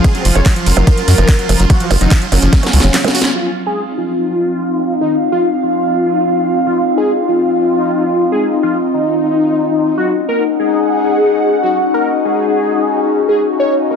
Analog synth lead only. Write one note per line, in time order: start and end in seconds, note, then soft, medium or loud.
0.04 0.19 G#4 loud
0.35 0.50 C#5 loud
0.66 1.62 A#4 loud
1.70 1.84 F#4 loud
2.01 2.15 D#4 loud
2.32 3.27 C#4 loud
3.35 3.50 F4 medium
3.66 3.81 G#4 loud
3.98 4.93 F4 loud
5.01 5.15 D#4 loud
5.32 5.46 F4 loud
5.63 6.58 F4 loud
6.66 6.81 F4 medium
6.97 7.12 G#4 medium
7.29 8.24 F4 loud
8.32 8.46 G#4 medium
8.63 8.77 F4 medium
8.94 9.89 D#4 loud
9.97 10.12 F#4 medium
10.29 10.43 A#4 loud
10.60 11.55 G#4 medium
11.63 11.77 F#4 loud
11.94 12.08 A#4 loud
12.25 13.20 G#4 medium
13.29 13.43 G#4 loud
13.60 13.74 C#5 loud
13.91 13.96 A#4 loud